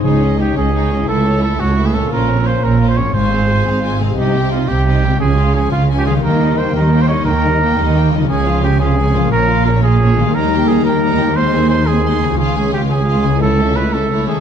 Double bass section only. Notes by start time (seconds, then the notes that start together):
0.04 C#2
0.56 C#2
1.09 C#2
1.61 C#2
2.12 A#1
2.63 A#1
3.14 G#1
3.67 G#1
4.17 C2
4.69 C2
5.21 C#2
5.72 C#2
6.23 D#2
6.74 D#2
7.25 D#2
7.77 D#2
8.29 C#2
9.32 A#1
10.34 D#2
12.39 C#2